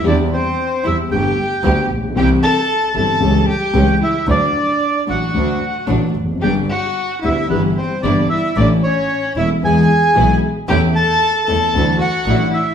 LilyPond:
<<
  \new Staff \with { instrumentName = "Bandoneon" } { \time 4/4 \key g \major \tempo 4 = 113 d''8 c''4 e''8 g''4. r8 | g''8 a''4 a''4 g''4 e''8 | d''4. fis''4. r4 | g''8 fis''4 e''8 b'8 c''8 d''8 e''8 |
d''8 cis''4 e''8 gis''4. r8 | g''8 a''4 a''4 fis''4 e''8 | }
  \new Staff \with { instrumentName = "Violin" } { \time 4/4 \key g \major d'8 c'4 e'8 g'4. r8 | g'8 a'4 a'4 g'4 e'8 | d'4. fis'4. r4 | g'8 fis'4 e'8 b8 c'8 d'8 e'8 |
d'8 cis'4 e'8 gis'4. r8 | g'8 a'4 a'4 fis'4 e'8 | }
  \new Staff \with { instrumentName = "String section" } { \time 4/4 \key g \major <g c' e'>8 r4 <g c' e'>8 <a b g'>8 r8 <a b g'>8 r8 | <g c' e'>8 r4 <g c' e'>8 <g a cis'>8 r8 <g a cis'>8 r8 | <fis a d'>8 r4 <fis a d'>8 <fis a d'>8 r8 <fis a d'>8 r8 | <g b d'>8 r4 <g b d'>8 <g b e'>8 r8 <g b e'>8 r8 |
<a cis' e'>8 r4 <a cis' e'>8 <gis b e'>8 r8 <gis b e'>8 r8 | <a cis' e'>8 r4 <a cis' e'>8 <fis d' e'>8 r8 <fis d' e'>8 r8 | }
  \new Staff \with { instrumentName = "Grand piano" } { \clef bass \time 4/4 \key g \major <e, e g c' g'>8 r4 <e, e g c' g'>8 <g,, g, d a b g'>8 r8 <d, d a b g'>8 r32 a,,32 bes,,32 b,,32 | <c, c e g c' g'>8 r4 <g,, g, e g c' g'>8 <cis, cis e a cis' g'>8 r8 <cis, cis e a cis' g'>8 r8 | <d, d fis a fis'>8 r4 <a,, a, d fis a fis'>8 <d, d fis a fis'>8 r8 <a,, a, d fis a fis'>8 r32 e,32 f,32 fis,32 | <g,, g, d g b g'>8 r4 <d, d g b g'>8 <g,, g, e g b g'>8 r8 <g,, g, e g b g'>8 r8 |
<a,, a, e a cis' a'>8 r4 <e,, e, e a cis' a'>8 <e, e gis b gis'>8 r8 <b,, b, e gis b gis'>8 r8 | <e, e a cis' a'>8 r4 <e, e a cis' a'>8 <d, d e a d' fis'>8 r8 <a,, a, e a d' fis'>8 r8 | }
  \new Staff \with { instrumentName = "Double bass" } { \clef bass \time 4/4 \key g \major e,8 r4 e,8 g,,8 r8 d,8 bes,,8 | c,8 r4 g,,8 cis,8 r8 cis,8 r8 | d,8 r4 a,,8 d,8 r8 a,,8 f,,8 | g,,8 r4 d,8 g,,8 r8 g,,8 r8 |
a,,8 r4 e,,8 e,8 r8 b,,8 r8 | e,8 r4 e,8 d,8 r8 a,,8 r8 | }
>>